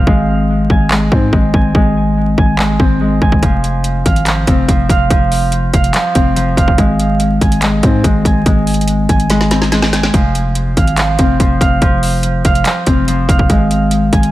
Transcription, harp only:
0, 0, Header, 1, 2, 480
1, 0, Start_track
1, 0, Key_signature, -4, "major"
1, 0, Tempo, 419580
1, 80, Time_signature, 4, 2, 24, 8
1, 16376, End_track
2, 0, Start_track
2, 0, Title_t, "Harp"
2, 0, Program_c, 0, 46
2, 0, Note_on_c, 0, 53, 84
2, 0, Note_on_c, 0, 60, 73
2, 0, Note_on_c, 0, 77, 85
2, 83, Note_on_c, 0, 56, 96
2, 137, Note_off_c, 0, 53, 0
2, 801, Note_on_c, 0, 80, 86
2, 1026, Note_off_c, 0, 56, 0
2, 1040, Note_on_c, 0, 56, 84
2, 1281, Note_off_c, 0, 60, 0
2, 1285, Note_on_c, 0, 60, 81
2, 1505, Note_off_c, 0, 56, 0
2, 1518, Note_on_c, 0, 56, 84
2, 1742, Note_off_c, 0, 77, 0
2, 1758, Note_off_c, 0, 80, 0
2, 1763, Note_on_c, 0, 80, 88
2, 1984, Note_off_c, 0, 56, 0
2, 1997, Note_on_c, 0, 56, 96
2, 2713, Note_off_c, 0, 80, 0
2, 2717, Note_on_c, 0, 80, 83
2, 2944, Note_off_c, 0, 56, 0
2, 2958, Note_on_c, 0, 56, 88
2, 3195, Note_off_c, 0, 60, 0
2, 3200, Note_on_c, 0, 60, 84
2, 3427, Note_off_c, 0, 56, 0
2, 3440, Note_on_c, 0, 56, 81
2, 3675, Note_off_c, 0, 80, 0
2, 3679, Note_on_c, 0, 80, 92
2, 3924, Note_on_c, 0, 53, 95
2, 3977, Note_off_c, 0, 56, 0
2, 4641, Note_on_c, 0, 77, 86
2, 4869, Note_off_c, 0, 53, 0
2, 4883, Note_on_c, 0, 53, 92
2, 5118, Note_off_c, 0, 60, 0
2, 5122, Note_on_c, 0, 60, 81
2, 5347, Note_off_c, 0, 53, 0
2, 5360, Note_on_c, 0, 53, 80
2, 5395, Note_off_c, 0, 80, 0
2, 5597, Note_off_c, 0, 77, 0
2, 5602, Note_on_c, 0, 77, 91
2, 5827, Note_off_c, 0, 53, 0
2, 5840, Note_on_c, 0, 53, 99
2, 6557, Note_off_c, 0, 77, 0
2, 6562, Note_on_c, 0, 77, 83
2, 6789, Note_off_c, 0, 53, 0
2, 6803, Note_on_c, 0, 53, 97
2, 7034, Note_off_c, 0, 60, 0
2, 7038, Note_on_c, 0, 60, 76
2, 7263, Note_off_c, 0, 53, 0
2, 7277, Note_on_c, 0, 53, 85
2, 7512, Note_off_c, 0, 77, 0
2, 7517, Note_on_c, 0, 77, 90
2, 7761, Note_on_c, 0, 56, 100
2, 7817, Note_off_c, 0, 53, 0
2, 8481, Note_on_c, 0, 80, 83
2, 8705, Note_off_c, 0, 56, 0
2, 8719, Note_on_c, 0, 56, 84
2, 8960, Note_off_c, 0, 60, 0
2, 8964, Note_on_c, 0, 60, 78
2, 9185, Note_off_c, 0, 56, 0
2, 9198, Note_on_c, 0, 56, 86
2, 9421, Note_off_c, 0, 77, 0
2, 9438, Note_off_c, 0, 80, 0
2, 9442, Note_on_c, 0, 80, 82
2, 9665, Note_off_c, 0, 56, 0
2, 9679, Note_on_c, 0, 56, 96
2, 10393, Note_off_c, 0, 80, 0
2, 10397, Note_on_c, 0, 80, 84
2, 10623, Note_off_c, 0, 56, 0
2, 10637, Note_on_c, 0, 56, 92
2, 10875, Note_off_c, 0, 60, 0
2, 10880, Note_on_c, 0, 60, 80
2, 11105, Note_off_c, 0, 56, 0
2, 11119, Note_on_c, 0, 56, 83
2, 11354, Note_off_c, 0, 80, 0
2, 11359, Note_on_c, 0, 80, 93
2, 11603, Note_on_c, 0, 53, 93
2, 11657, Note_off_c, 0, 56, 0
2, 12320, Note_on_c, 0, 77, 85
2, 12550, Note_off_c, 0, 53, 0
2, 12563, Note_on_c, 0, 53, 90
2, 12796, Note_off_c, 0, 60, 0
2, 12801, Note_on_c, 0, 60, 82
2, 13027, Note_off_c, 0, 53, 0
2, 13041, Note_on_c, 0, 53, 83
2, 13075, Note_off_c, 0, 80, 0
2, 13277, Note_off_c, 0, 77, 0
2, 13282, Note_on_c, 0, 77, 97
2, 13507, Note_off_c, 0, 53, 0
2, 13521, Note_on_c, 0, 53, 100
2, 14239, Note_off_c, 0, 77, 0
2, 14243, Note_on_c, 0, 77, 86
2, 14470, Note_off_c, 0, 53, 0
2, 14484, Note_on_c, 0, 53, 95
2, 14715, Note_off_c, 0, 60, 0
2, 14720, Note_on_c, 0, 60, 74
2, 14945, Note_off_c, 0, 53, 0
2, 14958, Note_on_c, 0, 53, 84
2, 15196, Note_off_c, 0, 77, 0
2, 15200, Note_on_c, 0, 77, 88
2, 15443, Note_on_c, 0, 56, 94
2, 15497, Note_off_c, 0, 53, 0
2, 16162, Note_on_c, 0, 80, 90
2, 16376, Note_off_c, 0, 56, 0
2, 16376, Note_off_c, 0, 60, 0
2, 16376, Note_off_c, 0, 77, 0
2, 16376, Note_off_c, 0, 80, 0
2, 16376, End_track
0, 0, End_of_file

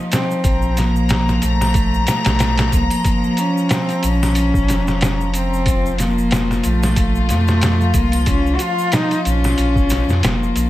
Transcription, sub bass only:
0, 0, Header, 1, 2, 480
1, 0, Start_track
1, 0, Key_signature, -5, "minor"
1, 0, Tempo, 652174
1, 329, Time_signature, 4, 2, 24, 8
1, 7873, End_track
2, 0, Start_track
2, 0, Title_t, "Sub bass"
2, 0, Program_c, 0, 38
2, 324, Note_on_c, 0, 34, 94
2, 1026, Note_off_c, 0, 34, 0
2, 1052, Note_on_c, 0, 34, 97
2, 1511, Note_off_c, 0, 34, 0
2, 1662, Note_on_c, 0, 34, 98
2, 1988, Note_off_c, 0, 34, 0
2, 2003, Note_on_c, 0, 36, 88
2, 2125, Note_off_c, 0, 36, 0
2, 2970, Note_on_c, 0, 34, 104
2, 3453, Note_on_c, 0, 29, 88
2, 3464, Note_off_c, 0, 34, 0
2, 4871, Note_off_c, 0, 29, 0
2, 4894, Note_on_c, 0, 34, 104
2, 5376, Note_on_c, 0, 41, 94
2, 5387, Note_off_c, 0, 34, 0
2, 5832, Note_off_c, 0, 41, 0
2, 5843, Note_on_c, 0, 36, 98
2, 6306, Note_off_c, 0, 36, 0
2, 6813, Note_on_c, 0, 34, 109
2, 7026, Note_off_c, 0, 34, 0
2, 7050, Note_on_c, 0, 34, 94
2, 7399, Note_off_c, 0, 34, 0
2, 7418, Note_on_c, 0, 41, 92
2, 7525, Note_off_c, 0, 41, 0
2, 7530, Note_on_c, 0, 29, 77
2, 7744, Note_off_c, 0, 29, 0
2, 7766, Note_on_c, 0, 34, 81
2, 7873, Note_off_c, 0, 34, 0
2, 7873, End_track
0, 0, End_of_file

